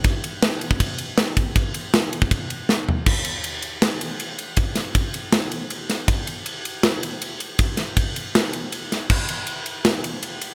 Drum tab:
CC |----------------|----------------|x---------------|----------------|
RD |x-x-x-x-x-x-x-x-|x-x-x-x-x-x-----|--x-x-x-x-x-x-x-|x-x-x-x-x-x-x-x-|
SD |----o-------o---|----o-------o---|--------o-------|--o-----o-----o-|
FT |----------------|--------------o-|----------------|----------------|
BD |o------oo-----o-|o------oo-------|o---------------|o---o-----------|

CC |----------------|----------------|x---------------|
RD |x-x-x-x-x-x-x-x-|x-x-x-x-x-x-x-x-|--x-x-x-x-x-x-x-|
SD |--------o-------|--o-----o-----o-|--------o-------|
FT |----------------|----------------|----------------|
BD |o---------------|o---o-----------|o---------------|